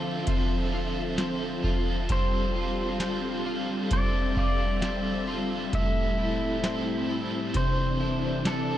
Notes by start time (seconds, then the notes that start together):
Already playing: D3 F3 C4 D4 F4 A4 D5 E5
0.27 D3 F3 C4 D4 A4, kick, closed hi-hat
0.72 C4 D4 F4 A4
1.17 F3 C4 D4 A4, snare, closed hi-hat
1.63 C4 D4 F4 A4, kick
2.09 G2 D3 F3 G3 C4 D4 F4 A4 C5, kick, closed hi-hat
2.54 F3 C4 D4 F4 A4
2.99 F3 C4 D4 A4, snare, closed hi-hat
3.45 F3 C4 D4 F4 A4
3.90 G2 D3 F3 C4 D4 A4 D5 E5, kick, closed hi-hat
4.36 F3 C4 D4 F4 A4 D5, kick
4.81 F3 C4 D4 A4, snare, closed hi-hat
5.26 F3 C4 D4 F4 A4
5.72 A2 E3 G3 C4 E4 A4 E5, kick, closed hi-hat
6.18 G3 C4 E4 A4
6.63 G3 C4 E4 A4, snare, closed hi-hat
7.09 G3 C4 E4 A4
7.54 C3 E3 G3 D4 E4 A4 C5, kick, closed hi-hat
8.00 G3 D4 E4 A4
8.45 G3 D4 E4 A4, snare, closed hi-hat